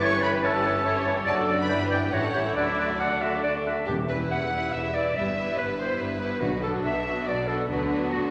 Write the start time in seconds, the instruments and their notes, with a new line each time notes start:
Already playing: double bass section G1, cello section G2, french horn section E3, viola section B4
0.00 bassoon E3, violin section A3 E4 C#6, french horn section C#4, oboe C#5, clarinet C#5, flute A6
0.12 violin section C#4 G4
0.20 bassoon E3, violin section A3 E4 B5, oboe B4, flute A6
0.25 clarinet C#5
0.33 violin section C#4 G4
0.42 bassoon E3, violin section A3 E4 A5, oboe A4, clarinet C#5, flute A6
0.54 violin section C#4 G4
0.63 bassoon E3, violin section A3 E4, clarinet C#5, flute A6
0.75 violin section C#4 G4
0.83 bassoon E3, violin section A3 E4, viola section C#5, clarinet C#5, flute A6
0.97 violin section C#4 G4
1.04 bassoon E3, violin section A3 E4, clarinet C#5, flute A6
1.18 violin section C#4 G4
1.25 double bass section F#1, cello section F#2, bassoon F#3, french horn section F#3 D4, oboe A4, clarinet D5, viola section D5, violin section A5, flute A6
1.30 violin section A3 F#4
1.39 violin section D4 A4
1.47 bassoon F#3, violin section A3 F#4, clarinet D5, flute A6
1.60 violin section D4 A4 B5, oboe B4
1.69 double bass section G1, cello section G2, bassoon E3, french horn section E3, violin section B3 E4, viola section B4, clarinet D5, flute G6
1.83 violin section D4 G4
1.90 bassoon E3, violin section B3 E4 G5, oboe G4, clarinet D5, flute G6
2.03 violin section D4 G4
2.12 double bass section A1, cello section A2, bassoon E3, french horn section G3 C#4, violin section E4 G4 F#5, oboe F#4, clarinet C#5, viola section C#5, flute G6
2.23 violin section C#4 A4
2.33 bassoon E3, violin section E4 G4, clarinet C#5, flute G6
2.45 violin section C#4 A4 E5, oboe E4
2.54 double bass section D2, cello section D3, bassoon D3, french horn section F#3 D4, violin section A3 F#4, oboe E4, viola section D5, clarinet D5, flute F#6
2.59 violin section E5
2.66 violin section D4 A4
2.77 bassoon D3, violin section A3 F#4, clarinet D5, flute F#6
2.88 violin section D4 A4
3.00 bassoon D3, violin section A3 F#4 D5, oboe D4, clarinet F#5, flute F#6
3.11 violin section D4 A4
3.22 bassoon D3, violin section A3 F#4, clarinet E5, flute F#6
3.35 violin section D4 A4
3.44 bassoon D3, violin section A3 F#4, clarinet D5, flute F#6
3.57 violin section D4 A4
3.66 bassoon D3, violin section A3 F#4, clarinet E5, flute F#6
3.78 violin section D4 A4
3.87 double bass section E1, timpani E2, cello section E2, french horn section G3 B3, clarinet G4, violin section G4
4.09 viola section G3 E4, violin section E4 B4, clarinet B4
4.30 double bass section E1, cello section E2, violin section F#5, clarinet F#5
4.52 viola section G3 E4, violin section E4 B4
4.73 double bass section E1, cello section E2, clarinet E5, violin section E5
4.94 viola section G3 E4, violin section E4 B4 D5, clarinet D5
5.15 double bass section G1, cello section G2, viola section G3 B3, french horn section G3 B3, violin section E4 B4 E5, clarinet E5
5.36 viola section G3 B3, violin section E4 B4
5.58 double bass section G1, cello section G2, violin section B4, clarinet B4
5.79 viola section G3 B3, violin section E4 B4 C5, clarinet C5
5.99 double bass section G1, cello section G2, violin section B4, clarinet B4
6.21 viola section G3 B3, violin section E4 B4
6.41 double bass section B1, cello section B2, timpani B2, french horn section F#3 D4, clarinet F#4, violin section F#4
6.62 viola section F#3 B3, violin section D4 F#4 A4, clarinet A4
6.84 double bass section B1, cello section B2, violin section E5, clarinet E5
7.06 viola section F#3 B3, violin section D4 F#4
7.27 double bass section B1, cello section B2, violin section D5, clarinet D5
7.47 viola section F#3 B3, violin section D4 F#4 A4, clarinet A4
7.68 double bass section D2, cello section D3, french horn section F#3 D4, viola section F#3 B3, violin section D4 F#4 B4, clarinet B4
7.89 viola section F#3 B3, violin section D4 F#4
8.11 double bass section D2, cello section D3, violin section F#4, clarinet F#4